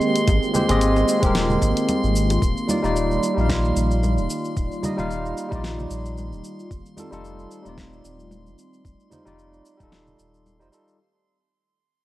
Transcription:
Already playing: D#3 G#3 A#3 C4 G4 D#5 C6
0.01 shaker
0.16 closed hi-hat, shaker
0.28 G#1 F4, kick, closed hi-hat, high bongo, shaker
0.43 shaker
0.53 G#3 C4 G4 C5, high bongo, high conga, low conga, shaker
0.68 G#1 G#3 C4 G4 D#5, closed hi-hat, low conga, shaker
0.81 closed hi-hat, shaker
0.96 high bongo, shaker
1.09 shaker
1.21 D#1 G#3 C4 G4, kick, closed hi-hat, high bongo, high conga, shaker
1.27 A#4
1.35 snare, closed hi-hat, shaker
1.50 low conga, shaker
1.62 G#1, kick, high bongo, shaker
1.77 closed hi-hat, shaker
1.89 closed hi-hat, high bongo, high conga, shaker
2.04 G#1, shaker
2.16 shaker
2.30 closed hi-hat, high bongo, shaker
2.42 D#1 G3 D5, kick, shaker
2.57 shaker
2.68 G3 D#4 F4 D5, high conga, shaker
2.83 D#1 G3 D#4 F4 D5, shaker
2.96 shaker
3.11 shaker
3.23 shaker
3.35 A#1 G3 D#4, shaker
3.39 F4 F5, high conga
3.49 kick, snare, shaker
3.64 shaker
3.76 A#1, shaker
3.91 shaker
4.03 high conga, shaker
4.18 D#1, shaker
4.30 shaker
4.44 shaker
4.56 D#1, kick, shaker
4.71 shaker
4.82 G3 D#4 F4 D#5, high conga, low conga, shaker
4.96 D#1 G3 D#4 F4 F5, low conga, shaker
5.10 shaker
5.25 shaker
5.37 shaker
5.49 A#1 G3 D#4 F4, kick, high conga, shaker
5.55 D5
5.64 snare, shaker
5.79 low conga, shaker
5.90 A#1, shaker
6.05 shaker
6.17 high conga, shaker
6.32 D#1, shaker
6.44 shaker
6.59 shaker
6.71 F1 A3 C4, kick, shaker
6.86 shaker
6.96 G3 D#4 F4 A4, high conga, shaker
7.11 F1 G3 D#4 F4 A4, shaker
7.25 shaker
7.39 shaker
7.51 shaker
7.63 D#1 G3 D#4 F4, high conga, shaker
7.69 D5
7.78 kick, snare, shaker
7.93 shaker
8.05 D#1, shaker
8.20 shaker
8.31 high conga, shaker
8.46 F1, shaker
8.59 shaker
8.74 shaker
8.85 F1 D#4, kick, shaker
9.00 shaker
9.10 G3 D#4 F4 C5, high conga, low conga, shaker
9.25 F1 G3 D#4 F4 D5, low conga, shaker
9.39 shaker
9.54 shaker
9.65 shaker
9.77 D#1 G3 D#4, kick, high conga, shaker
9.81 F4 A4
9.92 snare, shaker
10.07 low conga, shaker
10.19 D#1, shaker
10.34 shaker
10.46 high conga, shaker
10.59 F1 G3 D#4 F4 C5, shaker
10.71 G3 D#4 F4 A4, shaker
10.88 shaker

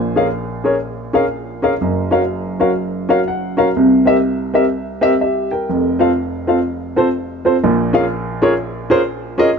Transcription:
Already playing: A#1 A#2 C5 G#5
0.16 C#4 G#4 A#4 F5
0.64 C#4 G#4 A#4 C#5
1.13 C#4 G#4 A#4 F5
1.62 C#4 G#4 A#4 F5
1.81 F#1 F#2
2.11 C#4 F#4 A#4 F5
2.60 C#4 F#4 A#4 F5
3.09 C#4 F#4 A#4 F5
3.28 F#5
3.57 C#4 F#4 A#4 F5 A#5
3.76 C2 C3
4.05 C4 G4 A#4 E5
4.54 C4 G4 A#4 E5
5.01 C4 G4 A#4 E5
5.21 G4 E5
5.51 A#4 G5
5.69 F1 F2
5.99 C4 F4 A4 F5
6.47 C4 F4 A4 F5
6.96 C4 F4 A4 C5
7.45 C4 F4 A4 C5
7.64 A#1 A#2
7.93 C#4 F4 G#4 A#4 F5
8.42 C#4 F4 G#4 A#4 C#5
8.90 C#4 F4 G#4 A#4 C5
9.38 C#4 F4 G#4 A#4 D#5

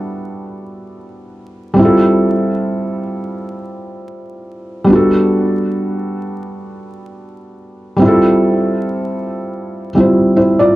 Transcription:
Already playing: G3 B3 D4 E4 F#4 A4 C5
1.74 G3 C4
1.79 E4 F4
1.85 A4
4.84 G3 B3
4.90 D4 F#4
4.95 A4
7.97 G3 C4
8.02 E4 F4
8.08 A4
9.95 G3 C4 E4
9.99 F4 C5
10.36 E4 C5
10.59 F4 D5

